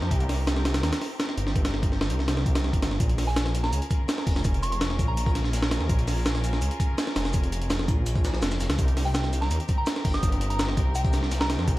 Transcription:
Already playing: string section C4 D#4 G4 A#4, synth bell A#5
0.02 detuned saw bass F2, snare
0.11 detuned saw bass C2, kick, closed hi-hat
0.20 closed hi-hat
0.29 snare, open hi-hat
0.47 snare, closed hi-hat
0.56 snare
0.65 snare, closed hi-hat
0.74 snare, closed hi-hat
0.83 detuned saw bass D#2, snare, closed hi-hat
0.93 snare, closed hi-hat
1.01 snare, open hi-hat
1.20 snare, closed hi-hat
1.29 snare
1.37 detuned saw bass G1, closed hi-hat
1.47 snare
1.56 kick, closed hi-hat
1.65 snare, closed hi-hat
1.74 snare
1.83 kick, closed hi-hat
1.92 snare
2.01 snare
2.10 detuned saw bass C2, closed hi-hat
2.19 snare
2.28 snare, closed hi-hat
2.37 snare
2.46 kick, closed hi-hat
2.55 snare, closed hi-hat
2.64 detuned saw bass C2, snare
2.73 detuned saw bass G1, kick, closed hi-hat
2.82 snare, closed hi-hat
2.91 snare
3.00 detuned saw bass A#1, string section C#4 F4 G#4 A#4, kick, closed hi-hat, shaker
3.09 closed hi-hat
3.18 snare, open hi-hat, shaker
3.27 synth bell G#5, snare
3.36 synth bell G#5, snare, closed hi-hat, shaker
3.45 snare, closed hi-hat
3.55 snare, closed hi-hat, shaker
3.63 synth bell A#5, snare
3.72 detuned saw bass C#2, closed hi-hat, shaker
3.82 closed hi-hat
3.90 kick, closed hi-hat, shaker
4.08 snare, closed hi-hat, shaker
4.18 snare
4.27 detuned saw bass F1, kick, closed hi-hat, open hi-hat
4.36 snare, closed hi-hat
4.44 kick, closed hi-hat, shaker
4.54 closed hi-hat
4.63 synth bell C#6, closed hi-hat, shaker
4.72 synth bell C#6, closed hi-hat
4.81 snare, closed hi-hat, shaker
4.90 snare
4.99 detuned saw bass A#1, kick, closed hi-hat, shaker
5.08 synth bell A#5
5.17 closed hi-hat, shaker
5.26 kick, closed hi-hat
5.35 snare, closed hi-hat, shaker
5.44 snare
5.53 detuned saw bass A#1, snare, closed hi-hat, shaker
5.62 snare
5.71 snare, closed hi-hat, shaker
5.80 detuned saw bass D#2, snare
5.89 detuned saw bass A#1, kick, closed hi-hat, shaker
5.99 closed hi-hat
6.08 snare, open hi-hat, shaker
6.16 snare
6.26 snare, closed hi-hat, shaker
6.35 snare, closed hi-hat
6.44 snare, closed hi-hat, shaker
6.53 snare
6.61 detuned saw bass C#2, closed hi-hat, shaker
6.71 closed hi-hat
6.80 kick, closed hi-hat, shaker
6.98 snare, closed hi-hat, shaker
7.07 snare
7.15 detuned saw bass F1, snare, closed hi-hat, open hi-hat
7.25 snare, closed hi-hat
7.33 kick, closed hi-hat, shaker
7.44 closed hi-hat
7.52 closed hi-hat, shaker
7.62 closed hi-hat
7.70 snare, closed hi-hat, shaker
7.79 snare
7.88 detuned saw bass A#1, kick, closed hi-hat, shaker
8.06 closed hi-hat, shaker
8.15 kick, closed hi-hat
8.24 snare, closed hi-hat, shaker
8.34 snare
8.42 detuned saw bass F1, snare, closed hi-hat, shaker
8.51 snare, shaker
8.60 detuned saw bass F1, snare, closed hi-hat, shaker
8.69 detuned saw bass C#2, snare, closed hi-hat
8.78 detuned saw bass C2, string section C4 D#4 G4 A#4, kick, closed hi-hat, shaker
8.88 closed hi-hat
8.97 snare, open hi-hat, shaker
9.05 synth bell G5, snare
9.14 synth bell G5, snare, closed hi-hat, shaker
9.23 snare, closed hi-hat
9.32 snare, closed hi-hat, shaker
9.41 synth bell A#5, snare
9.50 detuned saw bass D#2, closed hi-hat, shaker
9.60 closed hi-hat
9.68 kick, closed hi-hat, shaker
9.78 synth bell A#5
9.86 snare, closed hi-hat, shaker
9.96 snare
10.05 detuned saw bass G1, kick, closed hi-hat, open hi-hat
10.14 synth bell D#6, snare, closed hi-hat
10.23 kick, closed hi-hat, shaker
10.32 closed hi-hat
10.41 closed hi-hat, shaker
10.50 synth bell A#5, closed hi-hat
10.59 snare, closed hi-hat, shaker
10.68 snare
10.77 detuned saw bass C2, kick, closed hi-hat, shaker
10.95 synth bell G5, closed hi-hat, shaker
11.04 kick, closed hi-hat
11.12 snare, closed hi-hat, shaker
11.23 snare
11.31 detuned saw bass C2, snare, closed hi-hat, shaker
11.40 synth bell A#5, snare
11.50 snare, closed hi-hat, shaker
11.59 detuned saw bass F2, snare
11.68 detuned saw bass C2, kick, closed hi-hat, shaker

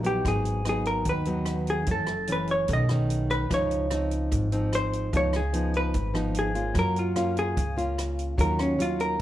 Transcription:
Already playing: upright bass A#1, nylon-string guitar A#2
0.03 nylon-string guitar F#3 B3 D#4, hollow-body jazz guitar G4, closed hi-hat
0.24 upright bass G#1, nylon-string guitar G#2, hollow-body jazz guitar G#4, kick, cross-stick, closed hi-hat
0.45 closed hi-hat
0.65 nylon-string guitar F#3 B3 D#4, cross-stick, closed hi-hat
0.69 hollow-body jazz guitar G#4
0.85 hollow-body jazz guitar A#4, closed hi-hat
1.05 upright bass D#2, nylon-string guitar D#3, kick, closed hi-hat
1.09 hollow-body jazz guitar B4
1.25 nylon-string guitar F#3 B3 D#4, closed hi-hat
1.46 cross-stick, closed hi-hat
1.67 hollow-body jazz guitar G#4, closed hi-hat
1.86 upright bass F#1, nylon-string guitar F#2 E3 A3 C#4, kick, closed hi-hat
1.91 hollow-body jazz guitar A4
2.07 cross-stick, closed hi-hat
2.27 nylon-string guitar E3 A3 C#4, closed hi-hat
2.32 hollow-body jazz guitar B4
2.47 hollow-body jazz guitar C#5, closed hi-hat
2.68 upright bass B1, nylon-string guitar B2 D#3 A3 C#4, kick, closed hi-hat
2.73 hollow-body jazz guitar D#5
2.89 nylon-string guitar D#3 A3 C#4, cross-stick, closed hi-hat
3.10 closed hi-hat
3.30 hollow-body jazz guitar B4, closed hi-hat
3.49 upright bass C#2, nylon-string guitar C#3 F3 D#4, kick, cross-stick, closed hi-hat
3.54 hollow-body jazz guitar C#5
3.71 closed hi-hat
3.91 nylon-string guitar F3 C4 D#4, cross-stick, closed hi-hat
4.11 closed hi-hat
4.31 upright bass G#1, nylon-string guitar G#2, kick, closed hi-hat
4.52 nylon-string guitar F3 C4 D#4, closed hi-hat
4.73 hollow-body jazz guitar C5, cross-stick, closed hi-hat
4.93 closed hi-hat
5.12 upright bass C#2, nylon-string guitar C#3 F3 B3 D#4, kick, closed hi-hat
5.17 hollow-body jazz guitar C#5
5.33 hollow-body jazz guitar G#4, cross-stick, closed hi-hat
5.53 nylon-string guitar F3 B3 D#4, closed hi-hat
5.74 hollow-body jazz guitar B4, closed hi-hat
5.94 upright bass G#1, nylon-string guitar G#2, kick, closed hi-hat
6.14 nylon-string guitar F3 B3 D#4, cross-stick, closed hi-hat
6.35 closed hi-hat
6.39 hollow-body jazz guitar G#4
6.55 nylon-string guitar A#3 C#4 F4, closed hi-hat
6.74 upright bass F#2, nylon-string guitar F#3, kick, cross-stick, closed hi-hat
6.79 hollow-body jazz guitar A#4
6.96 hollow-body jazz guitar F4, closed hi-hat
7.16 nylon-string guitar A#3 C#4 F4, cross-stick, closed hi-hat
7.37 hollow-body jazz guitar G#4, closed hi-hat
7.56 upright bass C#2, nylon-string guitar C#3, kick, closed hi-hat
7.77 nylon-string guitar A#3 C#4 F4, closed hi-hat
7.98 cross-stick, closed hi-hat
8.19 closed hi-hat
8.38 upright bass D#2, nylon-string guitar D#3 F#3 C#4 F4, hollow-body jazz guitar A#4, kick, closed hi-hat
8.59 hollow-body jazz guitar C#4, cross-stick, closed hi-hat
8.79 nylon-string guitar F#3 C#4 F4, hollow-body jazz guitar F4, closed hi-hat
9.00 hollow-body jazz guitar A#4, closed hi-hat

